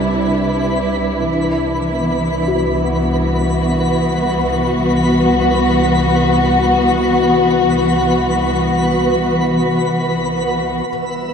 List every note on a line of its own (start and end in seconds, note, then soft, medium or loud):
0.00 1.22 C2 medium
0.00 1.28 C3 medium
0.00 1.29 G3 medium
0.00 3.72 D4 medium
0.00 5.13 E4 medium
0.00 10.91 B4 medium
0.00 10.91 B5 medium
1.28 10.82 C2 medium
1.28 10.88 E3 medium
1.88 11.34 B3 medium
2.48 6.39 F#4 soft
2.80 11.34 F#4 medium
10.89 11.34 C2 medium
10.89 11.34 C3 medium
10.89 11.34 E5 medium
10.89 11.34 E6 medium
11.10 11.34 G3 medium
11.28 11.34 D4 medium